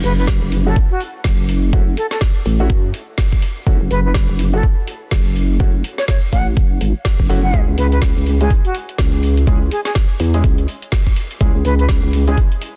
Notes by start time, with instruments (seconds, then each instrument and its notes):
0.04 wobble bass F#1, flute B4, open hi-hat
0.18 flute B4
0.27 kick, snare
0.42 wobble bass F#1
0.52 open hi-hat
0.66 grand piano A3 C#4 E4 F#4, flute A4
0.76 kick
0.91 flute F#4
1.00 open hi-hat
1.24 wobble bass F#1, kick, snare
1.49 open hi-hat
1.73 wobble bass F#1, grand piano A3 C#4 E4 F#4, kick
1.97 flute A4, open hi-hat
2.11 flute A4, snare
2.21 kick, snare
2.46 wobble bass A1, open hi-hat
2.60 grand piano A3 C#4 E4 F#4
2.70 wobble bass F#2, kick
2.94 open hi-hat
3.18 kick, snare
3.32 kick
3.42 open hi-hat
3.67 wobble bass F#1, grand piano A3 C#4 E4 F#4, kick
3.81 wobble bass F#1
3.91 wobble bass F#1, flute B4, open hi-hat
4.05 flute B4
4.14 kick, snare
4.29 wobble bass F#1
4.39 open hi-hat
4.53 grand piano A3 C#4 E4 F#4, flute A4
4.63 kick
4.88 open hi-hat
5.11 wobble bass F#1, kick, snare
5.36 open hi-hat
5.60 wobble bass F#1, grand piano A3 C#4 E4 F#4, kick
5.84 open hi-hat
5.98 flute C#5, snare
6.08 flute C#5, kick, snare
6.33 wobble bass A1, flute F#5, kick, open hi-hat
6.57 wobble bass F#1, kick
6.81 wobble bass G#1, open hi-hat
7.05 kick, snare
7.20 wobble bass F#1, kick
7.29 wobble bass F#1, grand piano A3 C#4 E4 F#4, open hi-hat
7.44 flute F#5
7.54 wobble bass C#2, grand piano G#3 C#4 E4 G#4, kick, closed hi-hat
7.68 wobble bass C#2
7.78 wobble bass C#2, flute B4, open hi-hat
7.92 flute B4, closed hi-hat
8.02 kick, snare, closed hi-hat
8.16 wobble bass C#2
8.26 open hi-hat
8.40 grand piano G#3 C#4 E4 G#4, flute G#4, closed hi-hat
8.50 kick, closed hi-hat
8.65 flute F#4, closed hi-hat
8.75 open hi-hat
8.89 closed hi-hat
8.98 wobble bass C#2, kick, snare, closed hi-hat
9.23 open hi-hat
9.37 closed hi-hat
9.47 wobble bass C#2, grand piano G#3 C#4 E4 G#4, kick, closed hi-hat
9.71 flute G#4, open hi-hat
9.85 flute G#4, snare, closed hi-hat
9.95 kick, snare, closed hi-hat
10.20 wobble bass E2, open hi-hat
10.34 grand piano G#3 C#4 E4 G#4, closed hi-hat
10.44 wobble bass C#2, kick, closed hi-hat
10.58 closed hi-hat
10.68 open hi-hat
10.82 closed hi-hat
10.92 kick, snare, closed hi-hat
11.07 kick
11.16 open hi-hat
11.31 closed hi-hat
11.41 wobble bass C#2, grand piano G#3 C#4 E4 G#4, kick, closed hi-hat
11.55 wobble bass C#2
11.65 wobble bass C#2, flute B4, open hi-hat
11.79 flute B4, closed hi-hat
11.89 kick, snare, closed hi-hat
12.03 wobble bass C#2
12.13 open hi-hat
12.27 grand piano G#3 C#4 E4 G#4, flute G#4, closed hi-hat
12.37 kick, closed hi-hat
12.52 closed hi-hat
12.62 open hi-hat